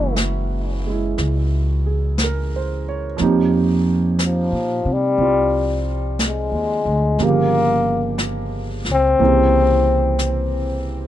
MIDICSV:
0, 0, Header, 1, 5, 480
1, 0, Start_track
1, 0, Key_signature, -4, "minor"
1, 0, Tempo, 1003344
1, 1521, Time_signature, 4, 2, 24, 8
1, 5296, End_track
2, 0, Start_track
2, 0, Title_t, "Grand piano"
2, 0, Program_c, 0, 0
2, 0, Control_c, 0, 64, 127
2, 0, Note_on_c, 0, 52, 41
2, 0, Note_on_c, 0, 56, 40
2, 0, Note_on_c, 0, 58, 38
2, 0, Note_on_c, 0, 61, 35
2, 0, Note_on_c, 0, 66, 45
2, 408, Note_off_c, 0, 56, 0
2, 416, Note_on_c, 0, 56, 37
2, 430, Note_on_c, 0, 64, 40
2, 891, Note_on_c, 0, 68, 35
2, 1071, Note_on_c, 0, 70, 41
2, 1136, Note_off_c, 0, 68, 0
2, 1225, Note_on_c, 0, 72, 42
2, 1363, Note_off_c, 0, 70, 0
2, 1381, Note_on_c, 0, 73, 44
2, 1464, Note_off_c, 0, 72, 0
2, 1515, Note_off_c, 0, 52, 0
2, 1515, Note_on_c, 0, 53, 45
2, 1523, Note_off_c, 0, 58, 0
2, 1527, Note_off_c, 0, 56, 0
2, 1527, Control_c, 0, 64, 0
2, 1530, Note_on_c, 0, 58, 40
2, 1534, Note_off_c, 0, 64, 0
2, 1537, Note_off_c, 0, 61, 0
2, 1538, Note_on_c, 0, 63, 39
2, 1543, Note_off_c, 0, 66, 0
2, 1544, Note_on_c, 0, 67, 47
2, 1617, Control_c, 0, 64, 127
2, 1622, Note_off_c, 0, 73, 0
2, 2489, Note_on_c, 0, 60, 32
2, 2496, Note_on_c, 0, 65, 40
2, 3432, Note_off_c, 0, 53, 0
2, 3435, Note_off_c, 0, 58, 0
2, 3439, Note_on_c, 0, 53, 38
2, 3441, Note_off_c, 0, 67, 0
2, 3443, Note_on_c, 0, 58, 35
2, 3445, Note_off_c, 0, 60, 0
2, 3445, Note_on_c, 0, 49, 36
2, 3446, Note_on_c, 0, 55, 34
2, 3448, Control_c, 0, 64, 0
2, 3448, Note_on_c, 0, 67, 42
2, 3449, Note_off_c, 0, 65, 0
2, 3450, Note_off_c, 0, 63, 0
2, 3536, Control_c, 0, 64, 127
2, 4392, Note_off_c, 0, 58, 0
2, 4396, Note_on_c, 0, 52, 45
2, 4399, Note_on_c, 0, 58, 43
2, 4400, Note_off_c, 0, 53, 0
2, 4403, Note_off_c, 0, 49, 0
2, 4404, Note_off_c, 0, 55, 0
2, 4405, Note_off_c, 0, 67, 0
2, 4407, Control_c, 0, 64, 0
2, 4407, Note_on_c, 0, 60, 40
2, 4417, Note_on_c, 0, 49, 40
2, 4418, Note_on_c, 0, 67, 47
2, 4498, Control_c, 0, 64, 127
2, 5296, Note_off_c, 0, 49, 0
2, 5296, Note_off_c, 0, 52, 0
2, 5296, Note_off_c, 0, 58, 0
2, 5296, Note_off_c, 0, 60, 0
2, 5296, Note_off_c, 0, 67, 0
2, 5296, End_track
3, 0, Start_track
3, 0, Title_t, "Trombone"
3, 0, Program_c, 1, 57
3, 0, Note_on_c, 1, 64, 84
3, 77, Note_off_c, 1, 64, 0
3, 2034, Note_on_c, 1, 53, 74
3, 2359, Note_on_c, 1, 55, 96
3, 2367, Note_off_c, 1, 53, 0
3, 2823, Note_off_c, 1, 55, 0
3, 3001, Note_on_c, 1, 56, 76
3, 3463, Note_on_c, 1, 58, 89
3, 3471, Note_off_c, 1, 56, 0
3, 3932, Note_off_c, 1, 58, 0
3, 4266, Note_on_c, 1, 60, 98
3, 5198, Note_off_c, 1, 60, 0
3, 5296, End_track
4, 0, Start_track
4, 0, Title_t, "Upright bass"
4, 0, Program_c, 2, 32
4, 0, Note_on_c, 2, 30, 67
4, 540, Note_off_c, 2, 30, 0
4, 568, Note_on_c, 2, 37, 71
4, 1506, Note_off_c, 2, 37, 0
4, 1532, Note_on_c, 2, 41, 77
4, 2148, Note_off_c, 2, 41, 0
4, 2163, Note_on_c, 2, 46, 51
4, 2311, Note_off_c, 2, 46, 0
4, 2321, Note_on_c, 2, 48, 58
4, 2470, Note_off_c, 2, 48, 0
4, 2478, Note_on_c, 2, 36, 67
4, 3101, Note_off_c, 2, 36, 0
4, 3118, Note_on_c, 2, 39, 46
4, 3268, Note_off_c, 2, 39, 0
4, 3279, Note_on_c, 2, 38, 56
4, 3429, Note_off_c, 2, 38, 0
4, 3439, Note_on_c, 2, 31, 72
4, 4226, Note_off_c, 2, 31, 0
4, 4249, Note_on_c, 2, 37, 54
4, 4392, Note_off_c, 2, 37, 0
4, 4400, Note_on_c, 2, 36, 64
4, 5296, Note_off_c, 2, 36, 0
4, 5296, End_track
5, 0, Start_track
5, 0, Title_t, "Drums"
5, 78, Note_on_c, 9, 25, 32
5, 78, Note_on_c, 9, 38, 33
5, 78, Note_on_c, 9, 44, 44
5, 126, Note_off_c, 9, 38, 0
5, 126, Note_off_c, 9, 44, 0
5, 564, Note_off_c, 9, 25, 0
5, 564, Note_on_c, 9, 25, 28
5, 564, Note_on_c, 9, 38, 24
5, 612, Note_off_c, 9, 38, 0
5, 1043, Note_off_c, 9, 25, 0
5, 1043, Note_on_c, 9, 25, 26
5, 1043, Note_on_c, 9, 38, 37
5, 1043, Note_on_c, 9, 44, 47
5, 1090, Note_off_c, 9, 38, 0
5, 1090, Note_off_c, 9, 44, 0
5, 1521, Note_off_c, 9, 25, 0
5, 1521, Note_on_c, 9, 25, 33
5, 1521, Note_on_c, 9, 38, 26
5, 1569, Note_off_c, 9, 38, 0
5, 2003, Note_off_c, 9, 25, 0
5, 2003, Note_on_c, 9, 25, 26
5, 2003, Note_on_c, 9, 38, 37
5, 2003, Note_on_c, 9, 44, 45
5, 2051, Note_off_c, 9, 38, 0
5, 2051, Note_off_c, 9, 44, 0
5, 2483, Note_off_c, 9, 25, 0
5, 2483, Note_on_c, 9, 25, 29
5, 2962, Note_off_c, 9, 25, 0
5, 2962, Note_on_c, 9, 25, 25
5, 2962, Note_on_c, 9, 38, 35
5, 2962, Note_on_c, 9, 44, 48
5, 3010, Note_off_c, 9, 38, 0
5, 3010, Note_off_c, 9, 44, 0
5, 3437, Note_off_c, 9, 25, 0
5, 3437, Note_on_c, 9, 25, 32
5, 3437, Note_on_c, 9, 38, 24
5, 3485, Note_off_c, 9, 38, 0
5, 3914, Note_off_c, 9, 25, 0
5, 3914, Note_on_c, 9, 25, 34
5, 3914, Note_on_c, 9, 38, 36
5, 3914, Note_on_c, 9, 44, 41
5, 3962, Note_off_c, 9, 38, 0
5, 3962, Note_off_c, 9, 44, 0
5, 4232, Note_on_c, 9, 38, 22
5, 4280, Note_off_c, 9, 38, 0
5, 4390, Note_off_c, 9, 25, 0
5, 4390, Note_on_c, 9, 25, 27
5, 4873, Note_off_c, 9, 25, 0
5, 4873, Note_on_c, 9, 25, 25
5, 4873, Note_on_c, 9, 38, 37
5, 4873, Note_on_c, 9, 44, 44
5, 4921, Note_off_c, 9, 38, 0
5, 4921, Note_off_c, 9, 44, 0
5, 5296, Note_off_c, 9, 25, 0
5, 5296, End_track
0, 0, End_of_file